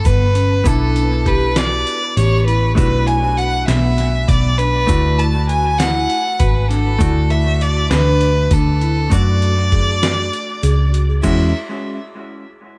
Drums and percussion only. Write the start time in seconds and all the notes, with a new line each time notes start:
0.05 kick, closed hi-hat, shaker
0.35 closed hi-hat, shaker
0.66 kick, closed hi-hat, shaker
0.96 closed hi-hat, shaker
1.26 kick, closed hi-hat
1.56 snare, closed hi-hat, shaker
1.87 closed hi-hat, shaker
2.17 closed hi-hat, shaker
2.48 closed hi-hat, shaker
2.78 kick, closed hi-hat, shaker
3.08 closed hi-hat
3.38 closed hi-hat, shaker
3.68 snare, closed hi-hat, shaker
3.98 snare, closed hi-hat
4.29 kick, closed hi-hat, shaker
4.58 closed hi-hat, shaker
4.88 kick, closed hi-hat, shaker
5.19 closed hi-hat
5.49 closed hi-hat, shaker
5.79 snare, closed hi-hat, shaker
6.10 closed hi-hat
6.40 kick, closed hi-hat, shaker
6.71 snare, closed hi-hat, shaker
7.01 kick, closed hi-hat, shaker
7.30 closed hi-hat
7.61 closed hi-hat, shaker
7.91 snare, closed hi-hat, shaker
8.21 closed hi-hat
8.51 kick, closed hi-hat, shaker
8.81 closed hi-hat
9.12 kick, closed hi-hat, shaker
9.42 closed hi-hat
9.72 kick, closed hi-hat
10.03 snare, closed hi-hat, shaker
10.33 closed hi-hat, shaker
10.63 closed hi-hat, shaker
10.94 closed hi-hat
11.24 kick, crash, shaker